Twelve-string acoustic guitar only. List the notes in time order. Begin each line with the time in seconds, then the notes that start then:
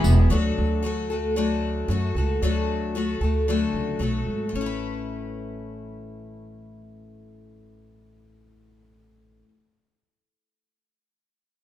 Already playing: E3 G#3 B3 E4 G#4
0.30 D3 F#3 A3 F#4 A4
0.83 F#3 A3 F#4 A4
1.10 A3 F#4 A4
1.36 D3 F#3 A3 F#4 A4
1.88 F#3 A3 F#4 A4
2.16 A3 F#4 A4
2.42 D3 F#3 A3 F#4 A4
2.95 F#3 A3 F#4 A4
3.21 A3 F#4 A4
3.48 D3 F#3 A3 F#4 A4
3.99 F#3 A3 F#4 A4
4.49 A3
4.55 C#4
4.61 E4
4.66 B4